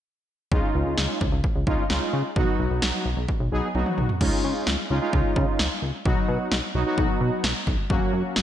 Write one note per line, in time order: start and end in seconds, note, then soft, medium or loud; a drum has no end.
0.51 0.61 C#2 loud
0.51 1.18 G#3 medium
0.51 1.18 C#4 medium
0.51 1.18 D#4 medium
0.51 1.18 F4 medium
0.51 kick loud
0.75 0.84 C#2 loud
0.86 0.96 C#2 medium
0.98 1.07 C#2 loud
0.98 snare loud
1.21 1.31 C#2 loud
1.21 kick medium
1.32 1.42 C#2 loud
1.44 kick medium
1.56 1.65 C#2 medium
1.67 1.77 C#2 loud
1.67 1.84 G#3 medium
1.67 1.84 C#4 medium
1.67 1.84 D#4 medium
1.67 1.84 F4 medium
1.67 kick medium
1.90 2.00 C#2 loud
1.90 2.23 G#3 medium
1.90 2.23 C#4 medium
1.90 2.23 D#4 medium
1.90 2.23 F4 medium
1.90 snare loud
2.13 2.23 C#3 medium
2.36 2.46 B1 loud
2.36 3.03 F#3 medium
2.36 3.03 B3 medium
2.36 3.03 D#4 medium
2.36 3.03 F#4 medium
2.36 kick loud
2.59 2.69 B1 loud
2.71 2.80 B1 loud
2.82 2.92 B1 loud
2.82 snare loud
3.06 3.15 B1 medium
3.17 3.27 B1 loud
3.28 kick medium
3.40 3.50 B1 medium
3.52 3.61 B1 loud
3.52 3.68 F#3 medium
3.52 3.68 B3 medium
3.52 3.68 D#4 medium
3.52 3.68 G#4 medium
3.75 3.84 B1 medium
3.75 4.08 F#3 medium
3.75 4.08 B3 medium
3.75 4.08 D#4 medium
3.75 4.08 F#4 medium
3.75 high tom medium
3.86 mid tom medium
3.98 4.07 B1 medium
3.98 mid tom medium
4.09 floor tom medium
4.21 4.30 C#2 loud
4.21 4.71 G#3 medium
4.21 4.71 C#4 medium
4.21 4.71 D#4 medium
4.21 4.71 F4 medium
4.21 kick loud
4.21 crash medium
4.44 4.54 C#3 loud
4.67 4.77 C#2 loud
4.67 snare loud
4.90 5.00 C#2 loud
4.90 4.98 G#3 medium
4.90 4.98 C#4 medium
4.90 4.98 D#4 medium
4.90 4.98 F4 medium
5.02 5.68 G#3 medium
5.02 5.68 C#4 medium
5.02 5.68 D#4 medium
5.02 5.68 F4 medium
5.13 5.23 C#2 loud
5.13 kick medium
5.36 5.46 C#3 loud
5.36 kick medium
5.59 5.69 C#2 loud
5.59 snare loud
5.82 5.92 C#2 medium
6.05 6.15 B1 loud
6.05 6.55 F#3 medium
6.05 6.55 B3 medium
6.05 6.55 D#4 medium
6.05 6.55 F#4 medium
6.05 kick loud
6.29 6.38 B2 loud
6.52 6.61 B1 loud
6.52 snare loud
6.75 6.84 B1 loud
6.75 6.83 F#3 medium
6.75 6.83 B3 medium
6.75 6.83 D#4 medium
6.75 6.83 F#4 medium
6.86 7.53 F#3 medium
6.86 7.53 B3 medium
6.86 7.53 D#4 medium
6.86 7.53 F#4 loud
6.98 7.07 B1 loud
6.98 kick medium
7.21 7.30 B2 loud
7.44 7.54 B1 loud
7.44 snare loud
7.67 7.77 B1 loud
7.67 kick medium
7.90 8.00 F#1 loud
7.90 8.40 F#3 medium
7.90 8.40 A#3 medium
7.90 8.40 C#4 medium
7.90 8.40 F#4 medium
7.90 kick loud
8.13 8.23 F#2 loud
8.36 8.42 F#1 loud
8.36 snare loud